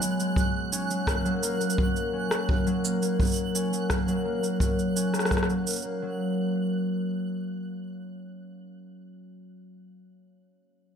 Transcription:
Already playing: harp F#3 B3, synth texture F#6
0.02 harp G#3, cabasa
0.19 harp G#3, cabasa
0.36 harp F#3, kick, cabasa
0.72 harp C#4, cabasa
0.90 harp F#3, cabasa
1.07 harp A#3, kick, cross-stick, cabasa
1.25 harp F#3, cabasa
1.43 harp A#3, cabasa
1.60 harp A#3, cabasa
1.70 cabasa
1.78 harp F#3, kick
1.96 cabasa
2.13 harp C#4
2.31 harp F#3, cross-stick, cabasa
2.49 harp A#3, kick
2.66 harp F#3, cabasa
2.84 harp A#3, cabasa
3.02 harp A#3, cabasa
3.19 harp F#3, kick, cabasa
3.22 cabasa
3.25 cabasa
3.27 cabasa
3.29 cabasa
3.31 cabasa
3.34 cabasa
3.36 cabasa
3.38 cabasa
3.55 harp C#4, cabasa
3.72 harp F#3, cabasa
3.90 harp A#3, kick, cross-stick, cabasa
4.08 harp F#3, cabasa
4.25 harp A#3
4.43 harp A#3, cabasa
4.60 harp F#3, kick, cabasa
4.79 cabasa
4.96 harp C#4, cabasa
5.14 harp F#3, cross-stick, cabasa
5.19 cross-stick, cabasa
5.25 cross-stick, cabasa
5.31 harp A#3, kick, cross-stick, cabasa
5.37 cross-stick, cabasa
5.43 cross-stick, cabasa
5.49 harp F#3, cabasa
5.67 harp A#3, cabasa
5.70 cabasa
5.73 cabasa
5.76 cabasa
5.79 cabasa
5.82 harp A#3, cabasa
6.02 harp F#3

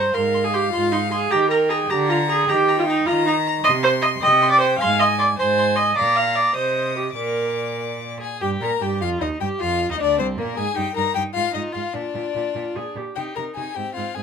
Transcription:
Already playing: viola C5, violin A#5
0.14 cello G#2, viola A#4, violin F5 C6
0.34 violin C6
0.44 viola G#4
0.53 viola G4, violin C6
0.72 cello G#2, viola F4, violin C6
0.92 viola D#4, violin C6
1.11 viola G#4, violin C6
1.30 cello D#3, viola G4, violin G5 A#5
1.50 viola A#4, violin A#5
1.69 viola G#4, violin A#5
1.89 cello D3, viola G4, violin A#5
2.09 viola F4, violin A#5
2.29 viola G#4, violin A#5
2.48 cello D#3, viola G4, violin G5 A#5
2.68 violin A#5
2.79 viola F4
2.87 viola D#4, violin A#5
3.06 cello D#3, viola F4, violin A#5
3.26 viola D#4, violin A#5
3.46 violin A#5
3.64 cello C3, viola D#5, violin C6
3.83 viola C5, violin C6
4.02 viola D#5, violin C6
4.21 cello C3, viola D#5, violin G5 C6
4.41 violin C6
4.51 viola D5
4.61 viola C5, violin C6
4.78 cello G#2, viola F5, violin G#5 C6
5.00 viola D#5, violin C6
5.18 viola D5, violin C6
5.37 cello G#2, viola C5, violin G#5 C6
5.58 violin C6
5.76 viola D#5, violin C6
5.96 cello A#2, viola D5, violin F5 A#5
6.16 viola F5
6.35 viola D5
6.54 cello C3, viola C5, violin D#5 D#6
6.96 viola G4
7.15 cello A#2, viola A#4, violin D5 D6
8.20 violin G#4 G#5
8.41 cello G2, viola G4, violin G4 G5
8.60 cello A#2, viola A#4, violin A#4 A#5
8.81 cello G2, viola G4, violin G4 G5
9.01 cello F2, viola F4, violin F4 F5
9.21 cello D#2, viola D#4, violin D#4 D#5
9.41 cello G2, viola G4, violin G4 G5
9.60 cello F2, viola F4, violin F4 F5
9.90 cello D#2, viola D#4, violin D#4 D#5
10.00 cello D2, viola D4, violin D4 D5
10.18 cello C2, viola C4, violin C4 C5
10.38 cello A#2, viola A#3, violin A#3 A#4
10.57 cello G#2, viola G#4, violin G#4 G#5
10.75 cello G2, viola D#4, violin G4 G5
10.94 cello G2, viola D#4, violin A#4 A#5
11.15 cello G2, viola D#4, violin G4 G5
11.34 cello G#2, violin F4 F5, viola F4
11.53 cello G#2, violin D#4 D#5, viola F4
11.72 cello G#2, violin F4 F5, viola F4
11.94 cello A#2, violin D4 D5, viola F4
12.15 cello A#2, viola F4
12.35 cello A#2, viola F4
12.55 cello A#2, viola F4
12.75 cello A#2, viola G#4
12.95 cello A#2, viola G4
13.15 cello C3, viola D#4, violin G4 G5
13.35 cello C3, viola D#4, violin A#4 A#5
13.55 cello C3, viola D#4, violin G#4 G#5
13.74 cello G#2, viola C4, violin G4 G5
13.95 cello G#2, viola C4, violin F4 F5
14.15 cello G#2, viola C4, violin G#4 G#5

